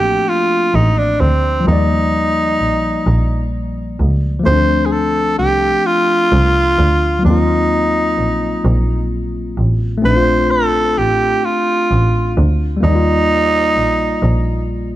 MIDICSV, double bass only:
0, 0, Header, 1, 2, 480
1, 0, Start_track
1, 0, Tempo, 930233
1, 850, Time_signature, 6, 3, 24, 8
1, 7719, End_track
2, 0, Start_track
2, 0, Title_t, "Double bass"
2, 0, Program_c, 0, 43
2, 382, Note_on_c, 0, 33, 77
2, 596, Note_off_c, 0, 33, 0
2, 620, Note_on_c, 0, 38, 75
2, 834, Note_off_c, 0, 38, 0
2, 863, Note_on_c, 0, 39, 85
2, 1316, Note_off_c, 0, 39, 0
2, 1341, Note_on_c, 0, 34, 41
2, 1426, Note_off_c, 0, 34, 0
2, 1582, Note_on_c, 0, 34, 85
2, 2035, Note_off_c, 0, 34, 0
2, 2061, Note_on_c, 0, 37, 78
2, 2275, Note_off_c, 0, 37, 0
2, 2302, Note_on_c, 0, 38, 85
2, 2755, Note_off_c, 0, 38, 0
2, 2780, Note_on_c, 0, 36, 39
2, 2865, Note_off_c, 0, 36, 0
2, 3261, Note_on_c, 0, 36, 74
2, 3496, Note_off_c, 0, 36, 0
2, 3500, Note_on_c, 0, 38, 82
2, 3714, Note_off_c, 0, 38, 0
2, 3740, Note_on_c, 0, 39, 80
2, 4195, Note_off_c, 0, 39, 0
2, 4219, Note_on_c, 0, 34, 39
2, 4304, Note_off_c, 0, 34, 0
2, 4462, Note_on_c, 0, 34, 87
2, 4915, Note_off_c, 0, 34, 0
2, 4940, Note_on_c, 0, 33, 75
2, 5154, Note_off_c, 0, 33, 0
2, 5181, Note_on_c, 0, 34, 79
2, 5635, Note_off_c, 0, 34, 0
2, 5665, Note_on_c, 0, 33, 40
2, 5747, Note_off_c, 0, 33, 0
2, 6145, Note_on_c, 0, 33, 77
2, 6357, Note_off_c, 0, 33, 0
2, 6384, Note_on_c, 0, 38, 79
2, 6597, Note_off_c, 0, 38, 0
2, 6622, Note_on_c, 0, 39, 85
2, 7075, Note_off_c, 0, 39, 0
2, 7101, Note_on_c, 0, 34, 40
2, 7185, Note_off_c, 0, 34, 0
2, 7339, Note_on_c, 0, 34, 82
2, 7719, Note_off_c, 0, 34, 0
2, 7719, End_track
0, 0, End_of_file